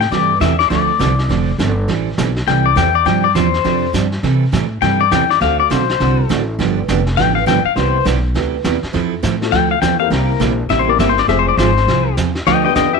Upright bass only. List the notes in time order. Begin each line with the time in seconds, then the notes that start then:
Already playing: A2
0.11 G2
0.40 E2
0.70 D2
1.00 C2
1.29 F1
1.58 G1
1.88 A1
2.18 B1
2.47 C2
2.76 E2
3.06 G2
3.35 E2
3.65 F2
3.94 G2
4.23 C3
4.53 A2
4.82 G2
5.11 E2
5.41 D2
5.71 B1
6.00 C2
6.30 A1
6.59 G1
6.88 F1
7.17 A1
7.47 G1
7.65 muted upright bass stroke
7.76 C2
8.06 B1
8.35 D2
8.64 E2
8.83 muted upright bass stroke
8.94 F2
9.23 A2
9.52 D2
9.82 E2
10.10 C2
10.40 A#1
10.69 A1
10.99 G1
11.28 F1
11.57 G#1
11.87 C2
12.17 E2
12.47 D2
12.75 F2